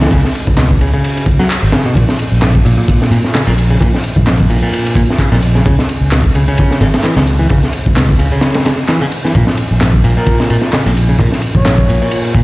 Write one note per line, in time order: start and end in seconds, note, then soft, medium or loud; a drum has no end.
0.01 0.08 E3 medium
0.01 snare medium
0.01 ride medium
0.01 shaker soft
0.06 snare loud
0.06 ride medium
0.11 0.22 C#2 loud
0.11 0.21 C#3 medium
0.11 kick loud
0.11 ride medium
0.11 shaker soft
0.25 snare soft
0.35 ride medium
0.35 shaker medium
0.47 0.78 C#2 medium
0.47 kick medium
0.47 shaker soft
0.57 0.67 B2 medium
0.57 snare loud
0.57 clap loud
0.57 ride medium
0.57 shaker soft
0.71 kick loud
0.81 0.91 C#2 loud
0.81 0.90 C#3 medium
0.81 ride medium
0.81 shaker medium
0.94 1.26 C#3 loud
0.94 shaker soft
1.04 ride medium
1.04 shaker soft
1.17 ride soft
1.26 1.37 C#2 medium
1.26 kick medium
1.26 ride medium
1.26 shaker medium
1.39 1.47 F#3 loud
1.39 snare soft
1.39 shaker soft
1.50 clap loud
1.50 ride medium
1.50 shaker soft
1.63 1.71 G#1 medium
1.72 1.85 C#3 medium
1.72 snare loud
1.72 ride medium
1.72 shaker medium
1.86 1.93 B2 loud
1.86 shaker soft
1.95 2.06 A#1 loud
1.95 2.05 A#2 medium
1.95 kick loud
1.95 ride medium
1.95 shaker soft
2.09 snare medium
2.19 open hi-hat medium
2.19 ride medium
2.19 shaker medium
2.32 2.62 A#1 medium
2.32 shaker soft
2.42 2.51 G#2 medium
2.42 snare loud
2.42 clap loud
2.42 ride medium
2.42 shaker soft
2.55 kick medium
2.65 2.76 A#1 medium
2.65 2.74 A#2 medium
2.65 open hi-hat medium
2.65 ride medium
2.65 shaker medium
2.77 3.10 A#2 loud
2.77 shaker soft
2.88 kick loud
2.88 ride medium
2.88 shaker soft
3.02 snare soft
3.11 3.17 A#2 loud
3.11 3.22 A#2 medium
3.11 open hi-hat medium
3.11 ride medium
3.11 shaker medium
3.24 snare soft
3.24 shaker soft
3.34 3.46 C#3 medium
3.34 snare loud
3.34 clap loud
3.34 ride loud
3.34 shaker soft
3.47 3.77 A#1 loud
3.47 3.51 A#2 loud
3.47 ride soft
3.58 open hi-hat medium
3.58 ride medium
3.58 shaker medium
3.71 3.78 C#3 medium
3.71 shaker soft
3.80 3.91 A#1 loud
3.80 3.89 A#2 medium
3.80 kick loud
3.80 ride medium
3.80 shaker soft
3.95 snare soft
4.04 open hi-hat medium
4.04 ride medium
4.04 shaker medium
4.16 4.47 A#1 medium
4.16 kick loud
4.16 shaker soft
4.27 4.36 G#2 medium
4.27 snare loud
4.27 clap loud
4.27 ride medium
4.27 shaker soft
4.40 kick medium
4.50 4.60 A#1 medium
4.50 4.59 A#2 medium
4.50 open hi-hat medium
4.50 ride medium
4.50 shaker medium
4.62 4.95 A#2 loud
4.62 shaker soft
4.73 ride medium
4.73 shaker soft
4.86 ride soft
4.95 5.06 A#2 medium
4.95 5.01 A#2 loud
4.95 kick medium
4.95 open hi-hat medium
4.95 ride medium
4.95 shaker medium
5.09 snare soft
5.09 shaker soft
5.19 5.31 C#3 medium
5.19 kick medium
5.19 clap loud
5.19 ride medium
5.19 shaker soft
5.32 5.62 A#1 loud
5.32 5.36 A#2 loud
5.32 snare soft
5.42 open hi-hat medium
5.42 ride medium
5.42 shaker medium
5.55 5.62 C#3 medium
5.55 snare soft
5.55 shaker soft
5.66 5.76 C#2 loud
5.66 5.74 C#3 medium
5.66 kick loud
5.66 ride medium
5.66 shaker soft
5.79 snare medium
5.89 open hi-hat medium
5.89 ride medium
5.89 shaker medium
6.01 6.31 C#2 medium
6.01 shaker soft
6.11 6.21 B2 medium
6.11 snare loud
6.11 clap loud
6.11 ride medium
6.11 shaker soft
6.24 kick medium
6.34 6.45 C#2 loud
6.34 6.44 C#3 medium
6.34 open hi-hat medium
6.34 ride medium
6.34 shaker medium
6.48 6.80 C#3 loud
6.48 shaker soft
6.58 kick loud
6.58 ride medium
6.58 shaker soft
6.71 snare soft
6.80 6.91 G#1 loud
6.80 6.86 C#3 loud
6.80 snare loud
6.80 open hi-hat medium
6.80 ride medium
6.80 shaker medium
6.94 snare loud
6.94 ride medium
6.94 shaker soft
7.04 7.16 E3 medium
7.04 snare loud
7.04 clap loud
7.04 ride medium
7.04 shaker soft
7.16 7.47 C#2 loud
7.16 7.21 C#3 loud
7.16 snare loud
7.16 ride medium
7.27 open hi-hat medium
7.27 ride medium
7.27 shaker medium
7.39 7.47 E3 medium
7.39 shaker soft
7.49 7.60 C#2 loud
7.49 7.59 C#3 medium
7.49 kick loud
7.49 ride medium
7.49 shaker soft
7.64 snare soft
7.73 open hi-hat medium
7.73 ride medium
7.73 shaker medium
7.86 8.16 C#2 medium
7.86 kick medium
7.86 shaker soft
7.96 8.05 B2 medium
7.96 snare loud
7.96 clap loud
7.96 ride medium
7.96 shaker soft
8.09 kick loud
8.19 8.29 C#2 medium
8.19 8.28 C#3 medium
8.19 open hi-hat medium
8.19 ride medium
8.19 shaker medium
8.32 8.64 C#3 loud
8.32 shaker soft
8.41 snare loud
8.41 ride medium
8.41 shaker soft
8.54 snare loud
8.54 ride medium
8.65 8.71 C#3 loud
8.65 snare loud
8.65 open hi-hat medium
8.65 ride medium
8.65 shaker medium
8.78 shaker soft
8.89 9.01 E3 medium
8.89 snare loud
8.89 clap loud
8.89 ride medium
8.89 shaker soft
9.02 9.06 C#3 loud
9.12 open hi-hat medium
9.12 ride medium
9.12 shaker medium
9.25 9.32 E3 medium
9.25 snare soft
9.25 shaker soft
9.35 9.45 A#1 medium
9.35 9.44 A#2 medium
9.35 kick loud
9.35 ride medium
9.35 shaker soft
9.47 snare medium
9.57 open hi-hat medium
9.57 ride medium
9.57 shaker medium
9.71 10.01 A#1 medium
9.71 shaker soft
9.81 9.90 G#2 medium
9.81 snare loud
9.81 clap loud
9.81 ride medium
9.81 shaker soft
9.94 kick medium
10.04 10.14 A#1 medium
10.04 10.13 A#2 medium
10.04 open hi-hat medium
10.04 ride medium
10.04 shaker medium
10.17 10.49 A#2 loud
10.17 10.36 A#4 loud
10.17 shaker soft
10.27 kick loud
10.27 ride loud
10.27 shaker soft
10.40 snare soft
10.50 10.60 A#2 medium
10.50 10.55 A#2 loud
10.50 open hi-hat medium
10.50 ride medium
10.50 shaker medium
10.62 snare soft
10.62 shaker soft
10.73 10.85 C#3 medium
10.73 snare loud
10.73 clap loud
10.73 ride medium
10.73 shaker soft
10.86 11.16 A#1 loud
10.86 10.90 A#2 loud
10.86 ride soft
10.97 open hi-hat medium
10.97 ride medium
10.97 shaker medium
11.09 11.16 C#3 medium
11.09 shaker soft
11.19 11.29 A#1 loud
11.19 11.28 A#2 medium
11.19 kick loud
11.19 ride medium
11.19 shaker soft
11.32 snare soft
11.42 open hi-hat medium
11.42 ride medium
11.42 shaker medium
11.55 11.85 A#1 medium
11.55 12.19 C#5 loud
11.55 kick medium
11.55 shaker soft
11.65 11.74 G#2 medium
11.65 snare loud
11.65 clap loud
11.65 ride medium
11.65 shaker soft
11.78 kick loud
11.88 11.99 A#1 medium
11.88 11.98 A#2 medium
11.88 open hi-hat medium
11.88 ride medium
11.88 shaker medium
12.02 12.34 A#2 loud
12.02 shaker soft
12.11 ride medium
12.11 shaker soft
12.24 ride soft
12.35 12.44 A#2 medium
12.35 12.40 A#2 loud
12.35 kick loud
12.35 open hi-hat medium
12.35 ride medium
12.35 shaker medium